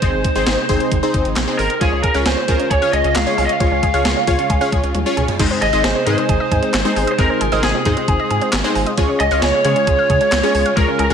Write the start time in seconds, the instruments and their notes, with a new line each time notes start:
Already playing: string machine C3 D#4, lead electric guitar C5
0.02 analog synth bass G#1, string machine G#3, analog polysynth C4 D#4 G#4 C5, kick, closed hi-hat
0.13 analog synth bass G#1
0.24 kick, closed hi-hat
0.36 analog synth bass G#1, analog polysynth C4 D#4 G#4 C5, closed hi-hat
0.47 analog synth bass G#1, snare, closed hi-hat
0.69 analog synth bass G#1, analog polysynth C4 D#4 G#4 C5, kick, closed hi-hat
0.80 closed hi-hat
0.92 analog synth bass G#1, kick, closed hi-hat
1.03 analog polysynth C4 D#4 G#4 C5
1.14 analog synth bass G#1, kick, closed hi-hat
1.25 analog synth bass G#1, closed hi-hat
1.36 analog synth bass A#1, snare, clap, closed hi-hat
1.48 analog polysynth C4 D#4 G#4 C5
1.59 analog synth bass G#1, lead electric guitar A#4, open hi-hat
1.70 closed hi-hat
1.81 analog synth bass C#2, string machine C#3 G#3 F4, synth arpeggio sound F3, analog polysynth C#4 F4 G#4 C#5, lead electric guitar G#4, kick, closed hi-hat
1.92 analog synth bass C#2, synth arpeggio sound C#4
2.03 synth arpeggio sound G#4, lead electric guitar A#4, kick, closed hi-hat
2.15 analog synth bass C#2, analog polysynth C#4 F4 G#4 C#5, synth arpeggio sound F5, closed hi-hat
2.26 analog synth bass C#2, synth arpeggio sound G#4, lead electric guitar C5, snare, closed hi-hat
2.37 synth arpeggio sound C#4
2.48 analog synth bass C#2, synth arpeggio sound F3, analog polysynth C#4 F4 G#4 A#4, kick, closed hi-hat
2.60 synth arpeggio sound C#4, closed hi-hat
2.71 analog synth bass C#2, synth arpeggio sound G#4, lead electric guitar C#5, kick, closed hi-hat
2.82 analog polysynth C#4 F4 G#4 C#5, synth arpeggio sound F5
2.93 analog synth bass C#2, synth arpeggio sound G#4, lead electric guitar D#5, closed hi-hat
3.04 analog synth bass C#2, synth arpeggio sound C#4, closed hi-hat
3.15 analog synth bass C#2, synth arpeggio sound F3, lead electric guitar F5, snare, clap, closed hi-hat
3.27 analog polysynth C#4 F4 G#4 C#5, synth arpeggio sound C#4
3.38 analog synth bass C2, synth arpeggio sound G#4, lead electric guitar F5, open hi-hat
3.45 lead electric guitar D#5
3.49 lead electric guitar F5, closed hi-hat
3.60 analog synth bass C#2, synth arpeggio sound F3, analog polysynth C#4 F4 G#4 C#5, kick, closed hi-hat
3.71 analog synth bass C#2, synth arpeggio sound C#4
3.83 synth arpeggio sound G#4, kick, closed hi-hat
3.94 analog synth bass C#2, analog polysynth C#4 F4 G#4 C#5, synth arpeggio sound F5, closed hi-hat
4.05 analog synth bass C#2, synth arpeggio sound G#4, snare, closed hi-hat
4.16 synth arpeggio sound C#4
4.27 analog synth bass C#2, synth arpeggio sound F3, analog polysynth C#4 F4 G#4 C#5, kick, closed hi-hat
4.39 synth arpeggio sound C#4, closed hi-hat
4.50 analog synth bass C#2, synth arpeggio sound G#4, kick, closed hi-hat
4.61 analog polysynth C#4 F4 G#4 C#5, synth arpeggio sound F5
4.72 analog synth bass C#2, synth arpeggio sound G#4, kick, closed hi-hat
4.84 analog synth bass C#2, synth arpeggio sound C#4, closed hi-hat
4.95 analog synth bass D#2, synth arpeggio sound F3, closed hi-hat, high tom
5.06 synth arpeggio sound C#4, analog polysynth C#4 F4 G#4 C#5
5.17 analog synth bass C#2, synth arpeggio sound G#4, closed hi-hat, mid tom
5.28 closed hi-hat, floor tom
5.39 analog synth bass G#1, string machine C3 G#3 D#4, synth arpeggio sound D#3, analog polysynth G#3 C4 D#4 G#4 C5, kick, closed hi-hat, crash
5.51 synth arpeggio sound C4
5.62 analog synth bass G#1, synth arpeggio sound G#4, lead electric guitar D#5, closed hi-hat
5.73 analog synth bass G#1, analog polysynth G#3 C4 D#4 G#4 C5, synth arpeggio sound D#5, closed hi-hat
5.84 analog synth bass G#1, synth arpeggio sound G#4, lead electric guitar C5, snare, closed hi-hat
5.95 synth arpeggio sound C4
6.07 analog synth bass G#2, synth arpeggio sound D#3, analog polysynth G#3 C4 D#4 G#4 D#5, lead electric guitar C5, closed hi-hat
6.18 synth arpeggio sound C4, closed hi-hat
6.29 analog synth bass G#1, synth arpeggio sound G#4, kick, closed hi-hat
6.40 synth arpeggio sound D#5
6.51 analog synth bass G#2, synth arpeggio sound G#4, kick, closed hi-hat
6.63 synth arpeggio sound C4, closed hi-hat
6.74 analog synth bass G#1, snare, clap, closed hi-hat
6.85 analog polysynth G#3 C4 D#4 G#4 C5, synth arpeggio sound C4
6.96 analog synth bass G#1, synth arpeggio sound G#4, open hi-hat
7.07 synth arpeggio sound D#5, closed hi-hat
7.12 lead electric guitar C5
7.19 analog synth bass G#1, synth arpeggio sound D#3, analog polysynth G#3 C4 D#4 G#4 C5, string machine F4, lead electric guitar A#4, kick, closed hi-hat
7.30 synth arpeggio sound C4
7.41 analog synth bass G#1, synth arpeggio sound G#4, closed hi-hat
7.52 analog synth bass G#1, analog polysynth G#3 C4 D#4 G#4 C5, synth arpeggio sound D#5, closed hi-hat
7.63 analog synth bass G#1, synth arpeggio sound G#4, lead electric guitar G#4, snare, closed hi-hat
7.75 synth arpeggio sound C4
7.85 analog synth bass G#2, synth arpeggio sound D#3, analog polysynth G#3 C4 D#4 G#4 C5, kick, closed hi-hat
7.97 synth arpeggio sound C4, closed hi-hat
8.08 analog synth bass G#1, synth arpeggio sound G#4, kick, closed hi-hat
8.20 synth arpeggio sound D#5
8.31 analog synth bass G#2, synth arpeggio sound G#4, closed hi-hat
8.41 synth arpeggio sound C4, closed hi-hat
8.53 analog synth bass G#1, snare, clap, closed hi-hat
8.64 analog polysynth G#3 C4 D#4 G#4 C5, synth arpeggio sound C4
8.75 analog synth bass G#1, synth arpeggio sound G#4, open hi-hat
8.86 synth arpeggio sound D#5, closed hi-hat
8.98 analog synth bass C#2, string machine C#3, synth arpeggio sound F3, analog polysynth G#3 C#4 F4 G#4 C#5, kick, closed hi-hat
9.09 synth arpeggio sound C#4
9.20 analog synth bass C#2, synth arpeggio sound G#4, lead electric guitar D#5, closed hi-hat
9.31 analog synth bass C#2, analog polysynth G#3 C#4 F4 G#4 C#5, synth arpeggio sound F5, closed hi-hat
9.42 analog synth bass C#2, synth arpeggio sound G#4, lead electric guitar C#5, snare, closed hi-hat
9.54 synth arpeggio sound C#4
9.65 analog synth bass C#3, synth arpeggio sound F3, analog polysynth G#3 C#4 F4 G#4 C#5, lead electric guitar C#5, closed hi-hat
9.76 synth arpeggio sound C#4, closed hi-hat
9.87 analog synth bass C#2, synth arpeggio sound G#4, kick, closed hi-hat
9.99 synth arpeggio sound F5
10.10 analog synth bass C#3, synth arpeggio sound G#4, kick, closed hi-hat
10.21 synth arpeggio sound C#4, closed hi-hat
10.32 analog synth bass C#2, snare, clap, closed hi-hat
10.43 analog polysynth G#3 C#4 F4 G#4 C#5, synth arpeggio sound C#4
10.54 analog synth bass C#2, synth arpeggio sound G#4, open hi-hat
10.66 synth arpeggio sound F5, closed hi-hat
10.77 analog synth bass C#2, synth arpeggio sound F3, analog polysynth G#3 C#4 F4 G#4 C#5, lead electric guitar A#4, kick, closed hi-hat
10.88 synth arpeggio sound C#4
10.99 analog synth bass C#2, synth arpeggio sound G#4, lead electric guitar A#4, closed hi-hat
11.10 analog synth bass C#2, analog polysynth G#3 C#4 F4 G#4 C#5, synth arpeggio sound F5, closed hi-hat